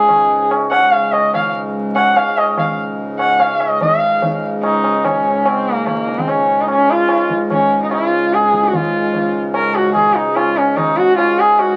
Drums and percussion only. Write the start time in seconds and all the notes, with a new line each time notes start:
0.09 tabla na, tabla ge
0.51 tabla na
0.71 tabla na
0.92 tabla na
1.13 tabla na
1.34 tabla na, tabla ge
1.96 tabla na
2.16 tabla na
2.38 tabla na
2.57 tabla na, tabla ge
3.19 tabla na
3.40 tabla na
3.60 tabla na
3.81 tabla tin, tabla ge
4.22 tabla tin, tabla ge
4.63 tabla na
4.84 tabla na
5.04 tabla na, tabla ge
5.45 tabla na
5.86 tabla na, tabla ge
6.08 tabla te
6.18 tabla ge
6.28 tabla na
6.68 tabla na
7.09 tabla na
7.30 tabla ke
7.50 tabla na, tabla ge
7.91 tabla na
8.32 tabla te
8.42 tabla te
8.53 tabla ke
8.63 tabla te
8.73 tabla tin, tabla ge
9.14 tabla tin, tabla ge
9.54 tabla na
9.75 tabla na
9.95 tabla na, tabla ge
10.36 tabla na
10.77 tabla na, tabla ge
10.97 tabla ge
11.18 tabla na
11.59 tabla na